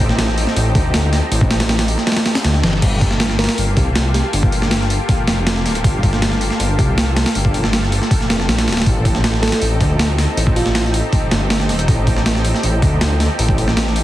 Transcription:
Already playing: detuned saw bass A1, analog synth pad C4 D#4 G4 A4
0.09 snare
0.19 snare, open hi-hat
0.28 snare
0.38 open hi-hat
0.47 snare
0.56 detuned saw bass A1, open hi-hat
0.75 detuned saw bass D2, kick, open hi-hat
0.94 snare, open hi-hat
1.13 snare, open hi-hat
1.32 detuned saw bass A1, open hi-hat
1.41 kick
1.51 snare, open hi-hat
1.60 snare, open hi-hat
1.69 snare, open hi-hat
1.79 snare, open hi-hat
1.88 open hi-hat
1.98 snare
2.07 snare, open hi-hat
2.12 snare, open hi-hat
2.17 snare, open hi-hat
2.26 snare, open hi-hat
2.35 snare, open hi-hat
2.44 detuned saw bass D2, snare, open hi-hat
2.54 snare
2.63 detuned saw bass G1, snare, open hi-hat
2.73 snare
2.82 detuned saw bass G1, analog synth pad A#3 F4 G4 A4, kick, open hi-hat, crash
3.01 kick, open hi-hat
3.11 snare
3.20 snare, open hi-hat
3.30 snare
3.39 fm electric piano A#4, snare, open hi-hat
3.44 snare, open hi-hat
3.49 snare, open hi-hat
3.58 detuned saw bass G1, open hi-hat
3.77 detuned saw bass C2, kick, open hi-hat
3.96 snare, open hi-hat
4.14 fm electric piano G4, snare, open hi-hat
4.24 fm electric piano G4
4.33 detuned saw bass G1, open hi-hat
4.43 kick
4.52 open hi-hat
4.62 snare
4.71 snare, open hi-hat
4.81 snare
4.90 open hi-hat
5.09 kick, open hi-hat
5.28 detuned saw bass F1, snare, open hi-hat
5.47 snare, open hi-hat
5.56 snare
5.65 detuned saw bass D1, snare, open hi-hat
5.75 closed hi-hat
5.84 detuned saw bass G1, kick, open hi-hat
6.03 kick, open hi-hat
6.13 snare
6.22 snare, open hi-hat
6.32 snare
6.41 open hi-hat
6.50 snare
6.60 detuned saw bass G1, open hi-hat
6.79 detuned saw bass C2, kick, open hi-hat
6.98 snare, open hi-hat
7.17 snare, open hi-hat
7.26 snare, open hi-hat
7.35 detuned saw bass G1, open hi-hat
7.45 kick
7.54 open hi-hat
7.64 snare
7.73 snare, open hi-hat
7.83 snare
7.92 open hi-hat
8.02 snare
8.11 kick, open hi-hat
8.21 snare
8.30 detuned saw bass F1, snare, open hi-hat
8.40 snare
8.49 detuned saw bass A#1, snare, open hi-hat
8.58 snare, open hi-hat
8.68 detuned saw bass D1, snare, open hi-hat
8.72 snare, open hi-hat
8.77 snare, open hi-hat
8.82 snare, open hi-hat
8.86 detuned saw bass A1, analog synth pad C4 D#4 G4, kick, open hi-hat
9.05 kick, open hi-hat
9.15 snare
9.24 snare, open hi-hat
9.34 snare
9.42 fm electric piano A4, snare, open hi-hat
9.48 snare, open hi-hat
9.52 snare, open hi-hat
9.62 detuned saw bass A1, open hi-hat
9.81 detuned saw bass D2, kick, open hi-hat
9.99 snare, open hi-hat
10.18 snare, open hi-hat
10.37 detuned saw bass A1, open hi-hat
10.47 kick
10.56 fm electric piano F4, open hi-hat
10.66 snare
10.75 snare, open hi-hat
10.85 snare
10.94 open hi-hat
11.13 kick, open hi-hat
11.31 detuned saw bass G1, snare, open hi-hat
11.50 snare, open hi-hat
11.60 snare
11.69 detuned saw bass D#1, snare, open hi-hat
11.79 closed hi-hat
11.88 detuned saw bass A1, kick, open hi-hat
12.07 kick, open hi-hat
12.16 snare
12.26 snare, open hi-hat
12.35 snare
12.45 open hi-hat
12.54 snare
12.63 detuned saw bass A1, open hi-hat
12.82 detuned saw bass D2, kick, open hi-hat
13.01 snare, open hi-hat
13.20 snare, open hi-hat
13.39 detuned saw bass A1, open hi-hat
13.49 kick
13.58 open hi-hat
13.68 snare
13.77 snare, open hi-hat
13.87 snare
13.96 open hi-hat

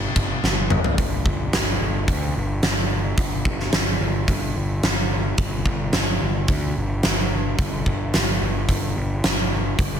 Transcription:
0.16 picked electric bass G1, kick, ride
0.44 picked electric bass G1, snare
0.70 mid tom
0.84 floor tom
0.98 picked electric bass G1, kick, open hi-hat
1.26 picked electric bass G1, kick
1.53 picked electric bass G1, snare, open hi-hat
1.81 picked electric bass G1
2.08 picked electric bass D2, kick, open hi-hat
2.36 picked electric bass G1
2.63 picked electric bass G1, snare, open hi-hat
3.18 picked electric bass G1, kick, open hi-hat
3.45 picked electric bass G1, kick
3.60 snare
3.73 picked electric bass G1, snare, open hi-hat
4.01 picked electric bass G1
4.28 picked electric bass G1, kick, open hi-hat
4.56 picked electric bass G1
4.83 picked electric bass G1, snare, open hi-hat
5.38 picked electric bass G1, kick, open hi-hat
5.66 picked electric bass G1, kick
5.93 picked electric bass G1, snare, open hi-hat
6.22 picked electric bass G1
6.48 picked electric bass D2, kick, open hi-hat
6.77 picked electric bass G1
7.03 picked electric bass G1, snare, open hi-hat
7.58 picked electric bass G1, kick, open hi-hat
7.86 picked electric bass G1, kick
8.14 picked electric bass G1, snare, open hi-hat
8.41 picked electric bass G1
8.69 picked electric bass G1, kick, open hi-hat
8.96 picked electric bass G1
9.24 picked electric bass G1, snare, open hi-hat
9.79 picked electric bass G1, kick, open hi-hat

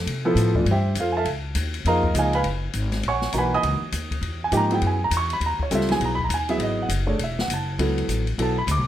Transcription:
Already playing: grand piano A4
0.06 upright bass C3, ride
0.25 grand piano F3 B3 E4 A4
0.35 upright bass A2, hi-hat pedal, ride
0.55 grand piano E3 A3 D4 F4, kick
0.65 upright bass G2, ride
0.71 grand piano G4 C5 E5 G5
0.95 upright bass F2, hi-hat pedal, ride
1.00 grand piano F4 A4 C5 F5
1.17 grand piano A4 E5 F5 A5
1.25 upright bass C#2, ride
1.55 upright bass D#2, hi-hat pedal, ride
1.74 ride
1.85 upright bass F2, grand piano F3 A#3 D#4 G#4 A#4 D#5 F5 A#5, ride
2.03 kick
2.14 upright bass C#2, grand piano F3 A#3 D#4 G#4, hi-hat pedal, ride
2.18 grand piano G#4 D#5 F5 G#5
2.33 grand piano B4 F5 G#5 B5, ride
2.44 upright bass F#1, ride
2.73 upright bass G#1, hi-hat pedal, ride
2.92 snare, ride
3.03 upright bass A#1, ride
3.08 grand piano C#5 F#5 G#5 C#6
3.21 snare
3.32 upright bass B1, grand piano E3 A#3 D#4 F#4 A#5, hi-hat pedal, ride
3.38 grand piano B4 F#5 G#5 B5
3.54 grand piano D#5 G#5 B5 D#6
3.63 upright bass C#2, ride
3.82 muted upright bass stroke
3.92 upright bass D#2, hi-hat pedal, ride
4.11 kick, ride
4.21 upright bass E2, ride
4.44 grand piano G#5
4.52 upright bass G#2, grand piano F3 A#3 D#4 G4, hi-hat pedal, ride
4.57 grand piano A#5
4.71 grand piano F#3 B3 E4 G#4 G5, ride
4.82 upright bass F#2, ride
4.87 grand piano G#5
5.04 grand piano A#5
5.11 upright bass E2, hi-hat pedal, ride
5.17 grand piano C#6
5.30 grand piano B5, ride
5.40 upright bass D#2, ride
5.46 grand piano A#5
5.59 grand piano C#5, muted upright bass stroke, kick
5.71 upright bass C#2, grand piano G3 C4 F4 A4, hi-hat pedal, ride
5.75 grand piano E5
5.81 snare
5.88 grand piano F#3 B3 E4 G#4 G#5, snare, ride
6.00 upright bass B1, ride
6.05 grand piano A#5
6.15 grand piano B5, kick
6.24 grand piano A#5
6.29 upright bass D#2, hi-hat pedal, ride
6.34 grand piano G#5
6.49 grand piano F#3 B3 E4 G#4 E5, ride
6.58 upright bass G#1, ride
6.63 grand piano D#5
6.82 grand piano F#5
6.89 upright bass F#1, hi-hat pedal, ride
7.07 grand piano A3 D4 G#4 C#5
7.19 upright bass E1, ride
7.24 grand piano E5
7.39 grand piano F#5, snare
7.48 upright bass F#1, hi-hat pedal, ride
7.54 grand piano A5
7.78 upright bass C#2, grand piano F#3 B3 E4 A4, ride
7.98 ride
8.08 upright bass A1, hi-hat pedal, ride
8.27 ride
8.38 upright bass B1, grand piano F#3 B3 E4 A4, ride
8.42 grand piano A5
8.58 grand piano B5
8.67 upright bass D2, hi-hat pedal, ride
8.71 grand piano D6
8.78 upright bass B1

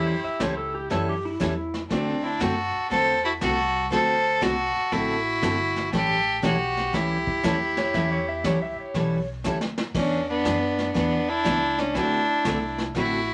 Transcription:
Already playing: upright bass E2, steel-string acoustic guitar E3 G3 C#4 E4 A4, fiddle E4 G4
0.06 pedal steel guitar C5
0.23 pedal steel guitar E5, muted upright bass stroke
0.40 upright bass C#2, steel-string acoustic guitar E3 G3 C#4 E4 A4, pedal steel guitar C5, kick, snare, hi-hat pedal
0.57 pedal steel guitar A4
0.75 pedal steel guitar G4
0.90 upright bass F#2, steel-string acoustic guitar E3 G3 C#4 E4 A4, pedal steel guitar A4, brush sweep, kick, snare
1.09 pedal steel guitar G4
1.25 pedal steel guitar E4
1.40 upright bass E2, steel-string acoustic guitar E3 G3 C#4 E4 A4, pedal steel guitar E4, kick, snare, hi-hat pedal
1.74 snare
1.90 upright bass D2, steel-string acoustic guitar D3 A3 C4 F#4 A4, fiddle C4 D4, brush sweep, kick, snare
2.24 fiddle D4 E4
2.40 upright bass F#2, steel-string acoustic guitar D3 A3 C4 F#4 A4, fiddle F#4 A4, kick, snare, hi-hat pedal
2.75 muted upright bass stroke
2.90 upright bass E2, steel-string acoustic guitar D3 A3 C4 F#4 A4, fiddle A4 C5, brush sweep, kick, snare
3.25 fiddle E4 F#4
3.41 upright bass C2, steel-string acoustic guitar D3 A3 C4 F#4 A4, fiddle F#4 A4, kick, snare, hi-hat pedal
3.91 upright bass D2, steel-string acoustic guitar D3 A3 C4 F#4 A4, fiddle A4 C5, brush sweep, kick, snare
4.41 upright bass C2, steel-string acoustic guitar D3 A3 C4 F#4 A4, fiddle F#4 A4, kick, snare, hi-hat pedal
4.76 muted upright bass stroke
4.92 upright bass A1, steel-string acoustic guitar D3 A3 C4 F#4 A4, fiddle E4 F#4, brush sweep, kick, snare
5.42 upright bass G1, steel-string acoustic guitar D3 A3 C4 F#4 A4, kick, snare, hi-hat pedal
5.76 snare
5.93 upright bass A1, steel-string acoustic guitar E3 G3 C#4 E4 A4, fiddle G4 A4, brush sweep, kick, snare
6.42 upright bass B1, steel-string acoustic guitar E3 G3 C#4 E4 A4, fiddle F#4 G4, kick, snare, hi-hat pedal
6.77 snare
6.93 upright bass C#2, steel-string acoustic guitar E3 G3 C#4 E4 A4, fiddle E4 G4, brush sweep, kick, snare
7.27 kick
7.43 upright bass D#2, steel-string acoustic guitar E3 G3 C#4 E4 A4, kick, snare, hi-hat pedal
7.77 pedal steel guitar C#5, snare
7.94 upright bass E2, steel-string acoustic guitar E3 G3 C#4 E4 A4, pedal steel guitar E5, brush sweep, kick, snare
8.12 pedal steel guitar C#5
8.29 pedal steel guitar E5
8.44 upright bass C#2, steel-string acoustic guitar E3 G3 C#4 E4 A4, pedal steel guitar C#5, kick, snare, hi-hat pedal
8.62 pedal steel guitar E5
8.79 pedal steel guitar C#5, muted upright bass stroke
8.94 upright bass B1, steel-string acoustic guitar E3 G3 C#4 E4 A4, brush sweep, kick, snare
9.44 upright bass D2, steel-string acoustic guitar E3 G3 C#4 E4 A4, snare, hi-hat pedal
9.61 snare
9.78 snare
9.95 upright bass E2, steel-string acoustic guitar E3 B3 D4 G#4, fiddle C#4 D4, brush sweep, kick, snare, crash
10.29 fiddle B3 D4
10.45 upright bass F#2, steel-string acoustic guitar E3 B3 D4 G#4, kick, snare, hi-hat pedal
10.79 snare
10.94 upright bass E2, steel-string acoustic guitar E3 B3 D4 G#4, fiddle B3 D4, brush sweep, kick, snare
11.29 fiddle D4 E4
11.44 upright bass C#2, steel-string acoustic guitar E3 B3 D4 G#4, kick, snare, hi-hat pedal
11.78 fiddle C#4 D4, snare
11.95 upright bass D2, steel-string acoustic guitar D3 A3 C4 F#4 A4, fiddle D4 E4, brush sweep, kick, snare
12.45 upright bass C2, steel-string acoustic guitar D3 A3 C4 F#4 A4, kick, snare, hi-hat pedal
12.78 snare
12.95 upright bass A1, steel-string acoustic guitar D3 A3 C4 F#4 A4, fiddle E4 F#4, brush sweep, kick, snare

